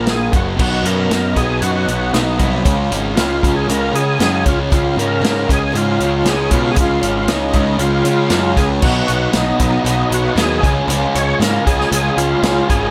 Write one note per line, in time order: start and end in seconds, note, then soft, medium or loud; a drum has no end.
0.00 0.29 A#1 medium
0.00 0.31 A#2 medium
0.00 0.31 F3 medium
0.00 0.32 A#3 medium
0.07 0.33 F3 medium
0.07 0.33 A#3 medium
0.07 0.34 F4 medium
0.07 0.33 G#4 medium
0.07 0.31 A#4 medium
0.07 snare loud
0.07 closed hi-hat medium
0.31 0.57 F#1 medium
0.31 0.57 F#2 medium
0.31 0.56 C#3 medium
0.31 0.55 F#3 medium
0.31 0.58 A#3 soft
0.31 0.58 D#4 soft
0.31 0.58 F#4 medium
0.31 kick loud
0.31 closed hi-hat medium
0.36 0.47 F#4 medium
0.56 0.82 B1 medium
0.56 0.85 B2 medium
0.56 0.85 D#3 medium
0.56 0.82 F#3 medium
0.56 0.85 B3 medium
0.56 2.63 B3 medium
0.56 0.85 D#4 medium
0.56 2.64 F#4 medium
0.56 0.85 F#4 medium
0.56 2.64 D#5 medium
0.56 kick loud
0.56 crash loud
0.61 2.64 D#4 medium
0.61 0.86 F#4 loud
0.83 1.07 F#2 medium
0.83 1.07 B2 medium
0.83 1.08 F#3 medium
0.83 1.08 B3 medium
0.83 1.11 F#4 soft
0.83 1.38 A#4 loud
0.83 closed hi-hat medium
0.88 1.11 B3 soft
0.88 1.12 D#4 soft
1.09 1.34 F#2 medium
1.09 1.34 B2 medium
1.09 1.37 D#3 soft
1.09 1.35 F#3 medium
1.09 1.37 B3 medium
1.09 snare loud
1.09 closed hi-hat medium
1.13 1.38 D#4 medium
1.13 1.37 F#4 medium
1.35 1.60 B1 medium
1.35 1.61 B2 medium
1.35 1.62 F#3 medium
1.35 1.62 B3 medium
1.35 1.63 F#4 soft
1.35 1.63 G#4 medium
1.35 kick medium
1.35 closed hi-hat medium
1.40 1.62 B3 soft
1.40 1.62 D#4 soft
1.62 1.85 F#2 medium
1.62 1.88 B2 medium
1.62 1.88 D#3 medium
1.62 1.87 F#3 loud
1.62 1.88 B3 medium
1.62 1.88 D#4 medium
1.62 1.71 F#4 medium
1.62 1.88 F#4 medium
1.62 closed hi-hat medium
1.72 2.14 F#4 medium
1.87 2.11 B1 medium
1.87 2.13 B2 medium
1.87 2.14 F#3 medium
1.87 2.15 D#4 soft
1.87 2.14 F#4 medium
1.87 closed hi-hat medium
1.91 2.14 B3 soft
2.14 2.37 B1 medium
2.14 2.37 B2 medium
2.14 2.40 D#3 medium
2.14 2.38 F#3 medium
2.14 2.40 B3 medium
2.14 2.50 D#4 medium
2.14 2.39 D#4 medium
2.14 2.38 F#4 medium
2.14 snare medium
2.14 closed hi-hat medium
2.38 2.63 C2 medium
2.38 2.63 B2 medium
2.38 2.63 F#3 medium
2.38 2.65 B3 soft
2.38 2.65 D#4 medium
2.38 2.65 F#4 medium
2.38 kick medium
2.38 closed hi-hat medium
2.65 2.88 C#2 medium
2.65 2.91 C#3 medium
2.65 2.91 F3 medium
2.65 2.91 G#3 medium
2.65 6.73 G#3 medium
2.65 2.91 C#4 loud
2.65 6.73 C#4 medium
2.65 6.73 F4 medium
2.65 2.90 F4 medium
2.65 6.74 C#5 medium
2.65 kick loud
2.65 closed hi-hat medium
2.91 3.14 G#1 medium
2.91 3.16 C#3 medium
2.91 3.16 G#3 soft
2.91 3.17 C#4 medium
2.91 3.17 F4 medium
2.91 closed hi-hat medium
3.15 3.40 C#2 medium
3.15 3.43 C#3 medium
3.15 3.42 F3 medium
3.15 3.43 G#3 medium
3.15 3.42 C#4 medium
3.15 3.56 F4 medium
3.15 3.41 F4 medium
3.15 snare loud
3.15 closed hi-hat loud
3.42 3.66 C#2 medium
3.42 3.67 C#3 medium
3.42 3.67 G#3 soft
3.42 3.67 C#4 medium
3.42 3.68 F4 soft
3.42 kick medium
3.42 closed hi-hat medium
3.55 3.67 G#4 medium
3.67 3.91 C#2 loud
3.67 3.94 C#3 medium
3.67 3.94 F3 medium
3.67 3.93 G#3 medium
3.67 3.92 C#4 medium
3.67 3.91 F4 medium
3.67 3.96 A#4 medium
3.67 closed hi-hat medium
3.92 4.18 C#3 medium
3.92 4.16 C#3 medium
3.92 4.17 G#3 soft
3.92 4.18 C#4 soft
3.92 4.19 F4 soft
3.92 4.19 G#4 loud
3.92 closed hi-hat medium
4.17 4.43 F#2 medium
4.17 4.44 C#3 medium
4.17 4.44 F3 medium
4.17 4.45 G#3 medium
4.17 4.44 C#4 medium
4.17 4.42 F4 medium
4.17 4.46 G#4 loud
4.17 snare loud
4.17 closed hi-hat medium
4.43 4.69 C#2 medium
4.43 4.71 C#3 medium
4.43 4.70 G#3 soft
4.43 4.71 C#4 soft
4.43 4.70 F4 medium
4.43 kick medium
4.43 closed hi-hat medium
4.48 4.59 F4 medium
4.70 4.95 C#2 medium
4.70 4.97 C#3 medium
4.70 4.97 F3 medium
4.70 4.97 G#3 medium
4.70 4.95 C#4 medium
4.70 4.94 F4 medium
4.70 4.97 F4 medium
4.70 kick loud
4.70 closed hi-hat medium
4.95 5.20 G#2 medium
4.95 5.22 C#3 medium
4.95 5.22 G#3 soft
4.95 5.22 C#4 soft
4.95 5.22 F4 soft
4.95 5.51 A#4 medium
4.95 closed hi-hat medium
5.21 5.45 G#2 medium
5.21 5.49 C#3 medium
5.21 5.48 F3 medium
5.21 5.49 G#3 medium
5.21 5.47 C#4 medium
5.21 5.46 F4 medium
5.21 snare loud
5.21 closed hi-hat medium
5.48 5.72 C#2 medium
5.48 5.72 C#3 medium
5.48 5.71 G#3 soft
5.48 5.72 C#4 soft
5.48 5.72 F4 medium
5.48 5.76 G#4 medium
5.48 kick medium
5.48 closed hi-hat medium
5.71 5.98 G#2 medium
5.71 5.98 C#3 medium
5.71 5.99 F3 medium
5.71 5.98 G#3 medium
5.71 5.97 C#4 medium
5.71 5.96 F4 medium
5.75 5.89 F4 medium
5.75 closed hi-hat medium
5.91 6.29 F4 medium
5.97 6.23 C#2 medium
5.97 6.25 C#3 medium
5.97 6.22 G#3 soft
5.97 6.23 C#4 medium
5.97 6.23 F4 medium
5.97 closed hi-hat medium
6.22 6.48 C#2 medium
6.22 6.50 C#3 medium
6.22 6.50 F3 medium
6.22 6.50 G#3 medium
6.22 6.49 C#4 medium
6.22 6.48 F4 medium
6.22 snare medium
6.22 closed hi-hat medium
6.28 6.51 G#4 medium
6.49 6.74 B2 medium
6.49 6.75 C#3 medium
6.49 6.74 G#3 soft
6.49 6.75 C#4 soft
6.49 6.74 F4 medium
6.49 kick medium
6.49 closed hi-hat medium
6.54 6.72 F4 medium
6.71 7.02 C#3 medium
6.71 6.78 G#4 medium
6.75 7.00 C#2 medium
6.75 7.02 F3 medium
6.75 7.02 G#3 medium
6.75 8.81 G#3 medium
6.75 7.02 C#4 medium
6.75 8.82 C#4 medium
6.75 7.00 F4 medium
6.75 8.81 F4 medium
6.75 kick loud
6.75 closed hi-hat loud
6.80 7.32 F4 medium
7.01 7.26 G#1 medium
7.01 7.27 C#3 medium
7.01 7.27 G#3 soft
7.01 7.28 C#4 soft
7.01 7.28 F4 medium
7.01 closed hi-hat medium
7.27 7.51 C#2 medium
7.27 7.50 C#3 medium
7.27 7.54 F3 medium
7.27 7.54 G#3 medium
7.27 7.54 C#4 medium
7.27 7.76 D#4 medium
7.27 7.53 F4 medium
7.27 snare loud
7.27 closed hi-hat loud
7.52 7.77 C#2 medium
7.52 7.77 C#3 medium
7.52 7.80 C#4 soft
7.52 7.80 F4 medium
7.52 kick medium
7.52 closed hi-hat medium
7.56 7.80 G#3 soft
7.78 8.02 C#2 medium
7.78 8.06 C#3 medium
7.78 8.06 F3 medium
7.78 8.06 G#3 medium
7.78 8.06 C#4 medium
7.78 8.53 F4 medium
7.78 8.04 F4 medium
7.78 closed hi-hat medium
8.04 8.29 C#3 medium
8.04 8.28 C#3 medium
8.04 8.29 G#3 soft
8.04 8.30 C#4 soft
8.04 8.31 F4 medium
8.04 closed hi-hat medium
8.29 8.54 F#2 medium
8.29 8.54 C#3 medium
8.29 8.56 F3 medium
8.29 8.57 G#3 medium
8.29 8.57 C#4 medium
8.29 8.57 F4 medium
8.29 snare loud
8.29 closed hi-hat medium
8.55 8.80 C#2 medium
8.55 8.80 C#3 medium
8.55 8.81 G#3 medium
8.55 8.84 F4 medium
8.55 8.69 G#4 loud
8.55 kick medium
8.55 snare soft
8.55 closed hi-hat medium
8.60 8.84 G#3 medium
8.60 8.84 C#4 medium
8.81 9.00 B1 medium
8.81 9.09 B2 medium
8.81 9.09 D#3 medium
8.81 10.60 F#3 medium
8.81 9.30 F#3 medium
8.81 10.61 B3 medium
8.81 9.10 B3 medium
8.81 10.61 D#4 medium
8.81 9.08 D#4 medium
8.81 9.30 F#4 loud
8.81 10.61 B4 medium
8.81 kick loud
8.81 crash loud
8.85 9.06 F#4 medium
9.08 9.26 B1 medium
9.08 9.34 B3 soft
9.08 9.34 D#4 soft
9.08 9.34 F#4 medium
9.08 closed hi-hat medium
9.32 9.51 B1 medium
9.32 9.60 B2 medium
9.32 9.83 F#3 medium
9.32 9.61 B3 medium
9.32 9.59 D#4 medium
9.32 snare loud
9.32 closed hi-hat medium
9.36 9.61 D#3 medium
9.36 9.83 D#4 medium
9.36 9.59 F#4 medium
9.58 9.77 B1 loud
9.58 9.84 B3 soft
9.58 9.85 D#4 soft
9.58 9.84 F#4 medium
9.58 kick medium
9.58 closed hi-hat medium
9.83 10.02 B1 loud
9.83 10.36 B2 medium
9.83 10.11 D#3 medium
9.83 10.32 F#3 medium
9.83 10.11 B3 medium
9.83 10.10 D#4 medium
9.83 10.09 F#4 medium
9.83 closed hi-hat medium
9.88 10.13 D#4 medium
10.10 10.28 B1 medium
10.10 10.37 B3 soft
10.10 10.37 D#4 soft
10.10 10.37 F#4 medium
10.10 closed hi-hat medium
10.33 10.63 D#2 medium
10.33 10.63 B2 medium
10.33 10.63 D#3 medium
10.33 10.60 F#3 medium
10.33 closed hi-hat medium
10.38 10.63 B3 medium
10.38 10.64 D#4 medium
10.38 10.62 F#4 loud
10.38 10.74 G#4 medium
10.38 snare loud
10.60 10.80 C#2 medium
10.60 10.85 C#3 medium
10.60 12.91 G#3 medium
10.60 10.87 C#4 medium
10.60 12.91 C#4 medium
10.60 10.89 F4 medium
10.60 12.91 F4 medium
10.60 10.87 G#4 medium
10.60 12.91 C#5 medium
10.60 kick loud
10.64 10.88 G#3 soft
10.64 10.89 C#4 medium
10.64 closed hi-hat medium
10.88 11.05 C#2 medium
10.88 11.14 C#3 loud
10.88 11.15 F3 medium
10.88 11.15 G#3 loud
10.88 11.15 C#4 medium
10.88 11.14 F4 loud
10.88 11.41 G#4 medium
10.88 closed hi-hat medium
11.14 11.32 C#2 medium
11.14 11.40 G#3 soft
11.14 11.40 C#4 medium
11.14 11.40 F4 medium
11.14 11.40 G#4 medium
11.14 11.39 C#5 loud
11.14 closed hi-hat medium
11.40 11.57 G#2 medium
11.40 11.66 C#3 medium
11.40 11.66 F3 medium
11.40 11.66 G#3 medium
11.40 11.66 C#4 medium
11.40 11.66 F4 medium
11.40 11.64 G#4 medium
11.40 11.65 A#4 loud
11.40 snare loud
11.40 closed hi-hat loud
11.65 11.83 C#2 medium
11.65 11.90 G#3 soft
11.65 11.91 C#4 medium
11.65 11.92 F4 medium
11.65 11.93 G#4 medium
11.65 11.90 G#4 medium
11.65 kick medium
11.65 closed hi-hat medium
11.81 snare soft
11.91 12.09 C#2 medium
11.91 12.43 C#3 medium
11.91 12.17 F3 soft
11.91 12.17 G#3 medium
11.91 12.17 C#4 medium
11.91 12.16 F4 medium
11.91 12.19 G#4 loud
11.91 12.15 G#4 loud
11.91 closed hi-hat loud
12.16 12.34 C#2 medium
12.16 12.43 C#4 soft
12.16 12.43 F4 medium
12.16 12.42 G#4 medium
12.16 closed hi-hat medium
12.21 12.42 G#3 soft
12.43 12.60 C#2 loud
12.43 12.69 C#3 medium
12.43 12.69 F3 medium
12.43 12.69 G#3 medium
12.43 12.69 C#4 medium
12.43 12.68 F4 medium
12.43 12.91 G#4 medium
12.43 snare loud
12.43 closed hi-hat medium
12.67 12.87 G#1 medium
12.67 12.91 C#4 medium
12.67 12.91 F4 medium
12.67 12.91 G#4 medium
12.67 12.87 G#4 medium
12.67 kick medium
12.67 closed hi-hat medium
12.72 12.91 G#3 soft